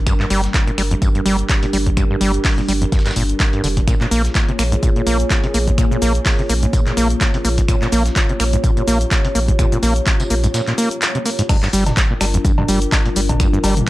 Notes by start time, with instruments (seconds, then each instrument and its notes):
Already playing: analog synth pad G3 D4 A#4
0.07 acid bass G2, analog synth pad G4, finger snap, kick, closed hi-hat, tambourine
0.20 acid bass G2, clap
0.30 sub bass G1, acid bass G3, open hi-hat, tambourine
0.44 snare, closed hi-hat
0.54 kick, snare, clap, closed hi-hat, tambourine
0.67 acid bass A#2, closed hi-hat
0.78 sub bass G1, acid bass G3, finger snap, open hi-hat, tambourine
0.91 acid bass F2, closed hi-hat
1.02 acid bass G2, kick, closed hi-hat, tambourine
1.15 acid bass G2, closed hi-hat
1.26 sub bass G1, acid bass G3, open hi-hat, tambourine
1.39 closed hi-hat
1.49 kick, snare, clap, closed hi-hat, tambourine
1.63 acid bass A#2, closed hi-hat
1.73 sub bass G1, acid bass G3, open hi-hat, tambourine
1.86 acid bass F2, kick, closed hi-hat
1.97 acid bass G2, finger snap, kick, closed hi-hat, tambourine
2.10 acid bass G2
2.21 sub bass G1, acid bass G3, open hi-hat, tambourine
2.34 closed hi-hat
2.45 kick, snare, clap, closed hi-hat, open hi-hat
2.58 acid bass A#2, closed hi-hat
2.68 sub bass G1, acid bass G3, open hi-hat, tambourine
2.82 acid bass F2, closed hi-hat
2.92 acid bass G2, kick, snare, closed hi-hat, tambourine
2.99 snare, tambourine
3.06 acid bass G2, snare, clap, closed hi-hat, tambourine
3.11 snare, tambourine
3.16 sub bass G1, acid bass A#2, open hi-hat, tambourine
3.29 closed hi-hat
3.40 kick, snare, clap, closed hi-hat, tambourine
3.53 acid bass G2, closed hi-hat
3.64 sub bass F1, acid bass D3, open hi-hat, tambourine
3.77 acid bass A#2, kick, closed hi-hat
3.88 acid bass A#2, analog synth pad A#3 F4 G#4 C#5, finger snap, kick, closed hi-hat, tambourine, shaker
4.01 acid bass A#2, clap, shaker
4.11 sub bass A#1, acid bass A#3, open hi-hat, tambourine, shaker
4.25 snare, closed hi-hat, shaker
4.35 kick, snare, clap, closed hi-hat, tambourine, shaker
4.48 acid bass C3, closed hi-hat
4.59 sub bass A#1, acid bass A#3, finger snap, open hi-hat, tambourine, shaker
4.72 acid bass G#2, closed hi-hat, shaker
4.83 acid bass A#2, kick, closed hi-hat, tambourine, shaker
4.96 acid bass A#2, closed hi-hat
5.07 sub bass A#1, acid bass A#3, open hi-hat, tambourine, shaker
5.20 closed hi-hat, shaker
5.30 kick, snare, clap, closed hi-hat, tambourine, shaker
5.44 acid bass C3, closed hi-hat
5.54 sub bass A#1, acid bass A#3, open hi-hat, tambourine, shaker
5.67 acid bass G#2, kick, closed hi-hat, shaker
5.78 acid bass A#2, finger snap, kick, closed hi-hat, tambourine, shaker
5.91 acid bass A#2, shaker
6.02 sub bass A#1, acid bass A#3, open hi-hat, tambourine, shaker
6.15 closed hi-hat, shaker
6.26 kick, snare, clap, closed hi-hat, open hi-hat, shaker
6.39 acid bass C3, closed hi-hat
6.49 sub bass A#1, acid bass A#3, open hi-hat, tambourine, shaker
6.63 acid bass G#2, closed hi-hat, shaker
6.73 acid bass A#2, kick, closed hi-hat, tambourine, shaker
6.87 acid bass A#2, clap, closed hi-hat
6.97 sub bass A#1, acid bass A#3, open hi-hat, tambourine, shaker
7.10 closed hi-hat, shaker
7.21 kick, snare, clap, closed hi-hat, tambourine, shaker
7.34 acid bass C3, closed hi-hat
7.45 sub bass A#1, acid bass A#3, open hi-hat, tambourine, shaker
7.58 acid bass G#2, kick, closed hi-hat, shaker
7.68 acid bass A#2, analog synth pad G4, finger snap, kick, closed hi-hat, tambourine, shaker
7.82 acid bass A#2, clap, shaker
7.92 sub bass A#1, acid bass A#3, open hi-hat, tambourine, shaker
8.06 snare, closed hi-hat, shaker
8.16 kick, snare, clap, closed hi-hat, tambourine, shaker
8.29 acid bass C3, closed hi-hat
8.40 sub bass A#1, acid bass A#3, finger snap, open hi-hat, tambourine, shaker
8.53 acid bass G#2, closed hi-hat, shaker
8.64 acid bass A#2, kick, closed hi-hat, tambourine, shaker
8.77 acid bass A#2, closed hi-hat
8.88 sub bass A#1, acid bass A#3, open hi-hat, tambourine, shaker
9.01 closed hi-hat, shaker
9.11 kick, snare, clap, closed hi-hat, tambourine, shaker
9.25 acid bass C3, closed hi-hat
9.35 sub bass A#1, acid bass A#3, open hi-hat, shaker
9.48 acid bass G#2, kick, closed hi-hat, shaker
9.59 acid bass A#2, finger snap, kick, closed hi-hat, tambourine, shaker
9.72 acid bass A#2, closed hi-hat, shaker
9.83 sub bass A#1, acid bass A#3, open hi-hat, tambourine, shaker
9.96 closed hi-hat, shaker
10.07 kick, clap, closed hi-hat, tambourine, shaker
10.20 acid bass C3, closed hi-hat, tambourine
10.30 sub bass A#1, acid bass A#3, open hi-hat, shaker
10.44 acid bass G#2, closed hi-hat, tambourine, shaker
10.54 acid bass A#2, snare, closed hi-hat, tambourine, shaker
10.67 acid bass A#2, clap, closed hi-hat
10.78 acid bass A#3, open hi-hat, tambourine, shaker
10.91 closed hi-hat, shaker
11.02 clap, closed hi-hat, tambourine, shaker
11.15 acid bass C3, closed hi-hat
11.26 acid bass A#3, open hi-hat, tambourine, shaker
11.39 acid bass G#2, closed hi-hat, shaker
11.49 acid bass G2, analog synth pad G3 D4 F4 A#4, finger snap, kick, closed hi-hat, crash, tambourine, cowbell, shaker
11.63 acid bass G2, clap, shaker
11.73 sub bass G1, acid bass G3, open hi-hat, tambourine, shaker
11.86 snare, closed hi-hat, mid tom, cowbell, shaker
11.97 kick, snare, clap, closed hi-hat, tambourine, shaker
12.10 acid bass A#2
12.21 sub bass G1, acid bass G3, finger snap, open hi-hat, tambourine, cowbell, shaker
12.34 acid bass F2, closed hi-hat, shaker
12.45 acid bass G2, kick, closed hi-hat, tambourine, shaker
12.58 acid bass G2, mid tom, cowbell
12.68 sub bass G1, acid bass G3, open hi-hat, tambourine, shaker
12.82 closed hi-hat, shaker
12.92 kick, snare, clap, closed hi-hat, tambourine, cowbell, shaker
13.06 acid bass A#2, closed hi-hat
13.16 sub bass G1, acid bass G3, open hi-hat, tambourine, shaker
13.29 acid bass F2, kick, closed hi-hat, mid tom, cowbell, shaker
13.40 acid bass G2, finger snap, kick, closed hi-hat, tambourine, shaker
13.53 acid bass G2, shaker
13.64 sub bass G1, acid bass G3, open hi-hat, tambourine, cowbell, shaker
13.77 closed hi-hat, mid tom, shaker